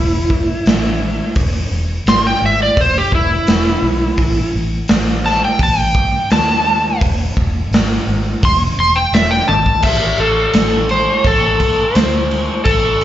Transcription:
Already playing: fingered electric bass E1, electric slide guitar E4
0.30 kick
0.66 fingered electric bass A1, snare, open hi-hat
1.35 fingered electric bass E1, kick, open hi-hat
1.71 fingered electric bass E1
2.06 fingered electric bass G#1, electric slide guitar C6, snare, open hi-hat
2.27 electric slide guitar G5
2.42 fingered electric bass G#1, electric slide guitar E5
2.63 electric slide guitar D5
2.77 fingered electric bass E1, electric slide guitar C5, kick, open hi-hat
2.98 electric slide guitar G4
3.12 fingered electric bass E1, electric slide guitar E4, kick
3.47 fingered electric bass E1, snare, open hi-hat
3.82 fingered electric bass B1
4.18 fingered electric bass A1, kick, open hi-hat
4.54 fingered electric bass A1
4.88 fingered electric bass A1, snare, open hi-hat
5.26 electric slide guitar A5, snare
5.45 electric slide guitar G5
5.59 fingered electric bass A1, kick, open hi-hat
5.63 electric slide guitar A5
5.79 electric slide guitar G5
5.95 kick
6.30 fingered electric bass D#2, electric slide guitar A5, snare, open hi-hat
7.01 fingered electric bass E1, kick, open hi-hat
7.37 fingered electric bass E1, kick
7.71 fingered electric bass G#1, snare, open hi-hat
8.07 fingered electric bass G#1
8.43 fingered electric bass E1, electric slide guitar C6, kick, open hi-hat
8.78 fingered electric bass E1, electric slide guitar C6
8.96 electric slide guitar G5
9.12 fingered electric bass E1, electric slide guitar E5, snare, open hi-hat
9.31 electric slide guitar G5
9.48 fingered electric bass G#1, electric slide guitar A5, high tom
9.66 kick
9.82 fingered electric bass A1, electric slide guitar E5, kick, crash
10.18 fingered electric bass A1, electric slide guitar A4, crash
10.53 fingered electric bass A1, snare, crash
10.89 electric slide guitar C5, crash
11.24 fingered electric bass A1, electric slide guitar A4, kick, crash
11.60 kick, crash
11.95 fingered electric bass D2, electric slide guitar C5, snare, crash
12.31 crash
12.65 fingered electric bass A1, electric slide guitar A4, kick, crash
13.01 crash

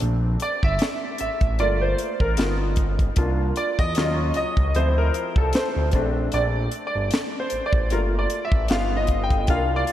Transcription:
Already playing: grand piano A3 C4 D4
0.00 analog synth bass A#1, closed hi-hat
0.40 grand piano D5, closed hi-hat
0.63 analog synth bass G1, grand piano E5, kick
0.79 snare, closed hi-hat
1.18 analog synth bass A1, grand piano E5, closed hi-hat
1.41 analog synth bass A1, kick, closed hi-hat
1.59 analog synth bass G1, grand piano A3 A#3 F4 D5, closed hi-hat
1.81 grand piano C5
1.98 closed hi-hat
2.20 analog synth bass A1, grand piano A#4, kick
2.37 analog synth bass G1, grand piano B3 D#4 F4 A#4, snare, closed hi-hat
2.76 kick, closed hi-hat
2.99 kick, closed hi-hat
3.16 analog synth bass C2, grand piano A#3 D4 F4, kick, closed hi-hat
3.56 grand piano D5, closed hi-hat
3.79 analog synth bass E2, grand piano D#5, kick, closed hi-hat
3.95 analog synth bass D#2, grand piano F#3 C#4 F4, snare, closed hi-hat
4.34 analog synth bass C#2, grand piano D#5, closed hi-hat
4.57 analog synth bass C#2, kick
4.75 analog synth bass D2, grand piano F3 C4 E4 C5, closed hi-hat
4.98 grand piano A#4
5.14 closed hi-hat
5.36 analog synth bass C2, grand piano A4, kick
5.53 grand piano C5, snare, closed hi-hat
5.76 analog synth bass D2
5.92 analog synth bass A#1, grand piano A3 C4 D4, kick, closed hi-hat
6.32 analog synth bass A#1, grand piano D5, closed hi-hat
6.71 closed hi-hat
6.87 grand piano D5
6.95 analog synth bass G1
7.11 snare, closed hi-hat
7.40 grand piano C5
7.50 analog synth bass A1, closed hi-hat
7.66 grand piano D5
7.73 analog synth bass A1, kick
7.90 analog synth bass G1, grand piano A3 A#3 F4 A#4, closed hi-hat
8.19 grand piano D5
8.30 closed hi-hat
8.45 grand piano E5
8.52 analog synth bass A1, kick
8.68 analog synth bass G1, grand piano B3 D#4 F4 F5, snare, closed hi-hat
8.97 grand piano D#5
9.07 kick, closed hi-hat
9.24 grand piano G5
9.30 kick, closed hi-hat
9.47 analog synth bass C2, grand piano A#3 D4 F4 F5, kick, closed hi-hat
9.76 grand piano D5
9.87 closed hi-hat

